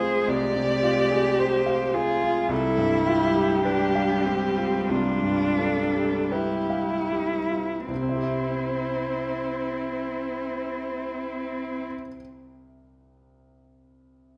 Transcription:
Already playing: grand piano C2 C3 G#4 C5 F5, viola G#3, cello G#4, violin C5
0.00 grand piano F4
0.27 grand piano C2, cello G4, violin D5
0.56 grand piano C3
0.83 grand piano F4
1.12 grand piano G#4
1.39 grand piano C5, violin C5
1.66 grand piano F5
1.94 cello F4, grand piano G#4, violin G#4
2.22 grand piano F4
2.49 grand piano C2, viola G3, cello E4, violin A4
2.78 grand piano G2
3.07 grand piano F4, violin G4
3.36 grand piano G4
3.65 cello D4, grand piano B4
3.95 grand piano F5
4.25 cello C4, grand piano G4
4.57 grand piano F4
4.89 grand piano C2, cello D4, violin F4
5.23 grand piano G2
5.58 grand piano F4, violin A4
5.95 grand piano G4
6.31 cello E4, violin G4, grand piano B4
6.70 grand piano F5
7.12 grand piano G4
7.51 grand piano F4
7.88 grand piano C2, cello C4, viola E4, violin C5
7.95 grand piano C3
8.02 grand piano C4
8.09 grand piano E4
8.16 grand piano G4
8.23 grand piano E5

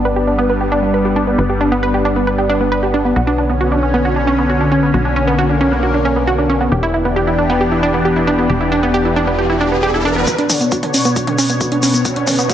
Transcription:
Already playing: analog synth bass G1, analog synth pad G3 B3 D4
0.05 synth pluck B4
0.16 synth pluck G4
0.27 synth pluck D4
0.38 synth pluck B3
0.50 synth pluck B4
0.61 synth pluck G4
0.72 synth pluck D4
0.83 synth pluck B3
0.94 synth pluck B4
1.05 synth pluck G4
1.16 synth pluck D4
1.27 synth pluck B3
1.38 analog synth bass G1, synth pluck B4
1.50 synth pluck G4
1.61 synth pluck D4
1.72 synth pluck B3
1.83 synth pluck B4
1.94 synth pluck G4
2.05 synth pluck D4
2.16 synth pluck B3
2.27 synth pluck B4
2.38 synth pluck G4
2.50 synth pluck D4
2.61 synth pluck B3
2.72 synth pluck B4
2.83 synth pluck G4
2.94 synth pluck D4
3.05 synth pluck B3
3.16 analog synth bass B1, analog synth pad D3 C#4, synth pluck F#4
3.27 synth pluck D4
3.38 synth pluck D4
3.50 synth pluck B3
3.61 synth pluck F#4
3.72 synth pluck D4
3.83 synth pluck C#4
3.94 synth pluck B3
4.05 synth pluck F#4
4.16 synth pluck D4
4.27 synth pluck C#4
4.38 synth pluck B3
4.50 synth pluck F#4
4.61 synth pluck D4
4.72 synth pluck C#4
4.83 synth pluck B3
4.94 analog synth bass B1, analog synth pad A#3, synth pluck F#4
5.05 synth pluck D4
5.16 synth pluck C#4
5.27 synth pluck B3
5.39 synth pluck F#4
5.50 synth pluck D4
5.61 synth pluck C#4
5.72 synth pluck B3
5.83 synth pluck F#4
5.94 synth pluck D4
6.05 synth pluck C#4
6.16 synth pluck B3
6.27 synth pluck F#4
6.38 synth pluck D4
6.50 synth pluck C#4
6.61 synth pluck B3
6.72 analog synth bass E1, analog synth pad E3 B3 D4 G4, synth pluck G4, riser
6.83 synth pluck E4
6.94 synth pluck E4
7.05 synth pluck B3
7.16 synth pluck G4
7.27 synth pluck E4
7.38 synth pluck D4
7.50 synth pluck B3
7.61 synth pluck G4
7.72 synth pluck E4
7.83 synth pluck D4
7.94 synth pluck B3
8.05 synth pluck G4
8.16 synth pluck E4
8.27 synth pluck D4
8.38 synth pluck B3
8.50 analog synth bass E1, synth pluck G4
8.61 synth pluck E4
8.72 synth pluck D4
8.83 synth pluck B3
8.94 synth pluck G4
9.05 synth pluck E4
9.16 synth pluck D4
9.27 synth pluck B3
9.39 synth pluck G4
9.50 synth pluck E4
9.61 synth pluck D4
9.72 synth pluck B3
9.83 synth pluck G4
9.94 synth pluck E4
10.05 synth pluck D4
10.16 synth pluck B3
10.27 analog synth pad B2 B3 D4 C#5, synth pluck F#4, kick, closed hi-hat, riser, shaker
10.38 synth pluck D4, closed hi-hat
10.50 synth pluck D4, open hi-hat, mid tom, shaker
10.61 synth pluck B3, closed hi-hat, shaker
10.71 synth pluck F#4, kick, closed hi-hat, shaker
10.83 synth pluck D4, closed hi-hat, mid tom
10.94 synth pluck C#4, open hi-hat, shaker
11.05 synth pluck B3, closed hi-hat, shaker
11.16 synth pluck F#4, kick, closed hi-hat, shaker
11.27 synth pluck D4, closed hi-hat, mid tom
11.38 synth pluck C#4, open hi-hat, shaker
11.49 synth pluck B3, closed hi-hat, shaker
11.61 synth pluck F#4, kick, closed hi-hat, shaker
11.72 synth pluck D4, closed hi-hat
11.83 synth pluck C#4, open hi-hat, shaker
11.94 synth pluck B3, closed hi-hat, shaker
12.05 synth pluck F#4, kick, closed hi-hat, shaker
12.16 synth pluck D4, closed hi-hat
12.27 synth pluck C#4, open hi-hat, mid tom, shaker
12.38 synth pluck B3, closed hi-hat, shaker
12.50 synth pluck F#4, kick, closed hi-hat, shaker

